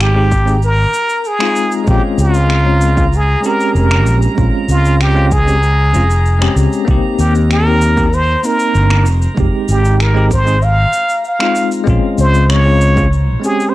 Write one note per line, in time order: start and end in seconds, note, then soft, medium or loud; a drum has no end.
0.00 0.85 G#1 medium
0.00 0.11 G#3 medium
0.00 0.12 C4 medium
0.00 0.13 D#4 medium
0.00 0.14 G4 medium
0.00 0.63 G4 loud
0.00 13.75 A#5 medium
0.00 finger snap medium
0.00 shaker soft
0.15 0.29 G#3 medium
0.15 0.29 C4 medium
0.15 0.30 D#4 medium
0.15 0.30 G4 loud
0.32 kick loud
0.32 shaker medium
0.45 0.55 G#3 medium
0.45 0.55 C4 medium
0.45 0.56 D#4 medium
0.45 0.56 G#4 medium
0.45 shaker soft
0.62 1.29 A#4 loud
0.62 shaker soft
0.94 shaker medium
1.09 shaker soft
1.25 1.73 G#4 loud
1.25 shaker soft
1.39 1.83 G#3 medium
1.39 1.83 C4 medium
1.39 1.84 D#4 medium
1.39 1.84 F4 medium
1.39 finger snap medium
1.56 shaker medium
1.72 shaker soft
1.84 1.98 A#1 medium
1.84 2.60 G#3 medium
1.84 2.61 C4 medium
1.84 kick loud
1.84 shaker soft
1.89 2.63 C#4 medium
1.89 2.63 F4 medium
1.89 2.03 G4 loud
2.18 3.34 C#2 medium
2.18 3.18 F4 medium
2.18 shaker medium
2.34 shaker soft
2.50 finger snap medium
2.50 shaker soft
2.65 2.93 G#3 medium
2.65 2.93 C4 medium
2.65 2.94 C#4 medium
2.65 2.94 F4 medium
2.81 shaker medium
2.95 3.05 G#3 medium
2.95 3.05 C4 medium
2.95 3.06 C#4 medium
2.95 3.06 F4 medium
2.95 kick loud
2.95 shaker soft
3.13 3.48 G#4 medium
3.13 shaker soft
3.40 4.32 G#3 medium
3.40 4.33 C4 medium
3.40 4.34 C#4 medium
3.40 shaker medium
3.46 4.35 G4 medium
3.46 3.76 A#4 medium
3.60 shaker soft
3.75 4.06 F1 medium
3.75 4.21 A#4 medium
3.75 shaker soft
3.91 finger snap medium
4.06 4.26 A#1 loud
4.06 shaker medium
4.22 shaker soft
4.35 4.48 A#1 medium
4.35 5.11 G#3 medium
4.35 5.12 C4 medium
4.35 5.12 C#4 medium
4.35 kick loud
4.35 shaker soft
4.40 5.13 F4 medium
4.69 5.95 C#2 medium
4.69 5.04 F4 medium
4.69 shaker medium
4.85 shaker soft
5.01 5.34 G4 medium
5.01 finger snap medium
5.01 shaker soft
5.14 5.29 G#3 medium
5.14 5.29 C4 medium
5.14 5.30 C#4 medium
5.14 5.30 F4 loud
5.31 6.57 G#4 loud
5.31 kick loud
5.31 shaker medium
5.45 5.55 G#3 medium
5.45 5.55 C4 medium
5.45 5.56 C#4 medium
5.45 5.56 G4 loud
5.45 shaker soft
5.63 shaker soft
5.93 6.47 F1 medium
5.93 6.02 G#3 medium
5.93 6.02 C4 medium
5.93 6.03 C#4 medium
5.93 6.03 F4 medium
5.93 shaker medium
6.10 shaker soft
6.26 shaker soft
6.39 6.83 G#3 medium
6.39 6.83 C4 medium
6.39 6.84 C#4 medium
6.39 6.84 G4 loud
6.39 finger snap medium
6.56 6.66 C#2 medium
6.56 shaker medium
6.73 shaker soft
6.85 6.98 C2 medium
6.85 7.61 A#3 medium
6.85 7.62 C4 medium
6.85 7.63 D#4 medium
6.85 kick loud
6.85 shaker soft
6.91 7.64 G4 loud
7.19 8.35 D#2 medium
7.19 7.34 G4 medium
7.19 shaker medium
7.35 shaker soft
7.50 8.16 A#4 loud
7.50 finger snap medium
7.50 shaker soft
7.65 7.93 A#3 medium
7.65 7.93 C4 medium
7.65 7.94 D#4 medium
7.65 7.94 G4 medium
7.81 shaker medium
7.96 8.05 A#3 medium
7.96 8.06 C4 medium
7.96 8.06 D#4 medium
7.96 8.06 G4 medium
7.96 kick loud
7.96 shaker soft
8.13 8.47 C5 loud
8.13 shaker soft
8.43 9.04 A#3 medium
8.43 9.05 C4 medium
8.43 9.05 D#4 medium
8.43 9.07 A#4 loud
8.43 9.05 A#4 medium
8.43 shaker medium
8.60 shaker soft
8.75 9.06 G1 medium
8.75 shaker soft
8.90 finger snap medium
9.06 9.26 F1 loud
9.06 shaker medium
9.22 shaker soft
9.35 9.48 F1 medium
9.35 10.11 G#3 medium
9.35 10.11 C4 medium
9.35 10.13 D#4 medium
9.35 kick loud
9.35 shaker soft
9.40 10.13 G4 medium
9.69 10.85 G#1 medium
9.69 10.03 G4 medium
9.69 shaker medium
9.85 shaker soft
10.00 10.32 A#4 medium
10.00 finger snap medium
10.00 shaker soft
10.14 10.29 G#3 medium
10.14 10.29 C4 medium
10.14 10.30 D#4 medium
10.14 10.30 G4 loud
10.31 10.66 C5 loud
10.31 kick medium
10.31 shaker medium
10.45 10.55 G#3 medium
10.45 10.55 C4 medium
10.45 10.56 D#4 medium
10.45 10.56 G#4 loud
10.45 shaker soft
10.62 11.26 F5 loud
10.62 shaker soft
10.93 shaker medium
11.09 shaker soft
11.25 11.70 F5 medium
11.25 shaker soft
11.39 11.83 G#3 medium
11.39 11.83 C4 medium
11.39 11.84 D#4 medium
11.39 11.85 F4 medium
11.39 finger snap medium
11.56 shaker medium
11.72 shaker soft
11.84 11.97 A#1 medium
11.84 12.60 G#3 loud
11.84 12.61 C4 medium
11.84 12.62 C#4 medium
11.84 kick loud
11.84 shaker soft
11.89 12.63 F4 loud
12.18 13.34 C#2 medium
12.18 12.52 C5 loud
12.18 shaker medium
12.34 shaker soft
12.50 13.13 C#5 loud
12.50 finger snap medium
12.50 shaker soft
12.64 12.92 G#3 medium
12.64 12.93 C4 medium
12.64 12.93 C#4 medium
12.64 12.94 F4 medium
12.81 shaker medium
12.95 13.04 G#3 medium
12.95 13.05 C4 medium
12.95 13.05 C#4 medium
12.95 13.06 F4 medium
12.95 kick loud
12.95 shaker soft
13.13 shaker soft
13.40 13.75 G#3 medium
13.40 13.75 C4 medium
13.44 13.75 C#4 medium
13.44 13.75 G4 medium
13.44 13.71 G#4 medium
13.44 shaker medium
13.60 shaker soft
13.69 13.75 C5 medium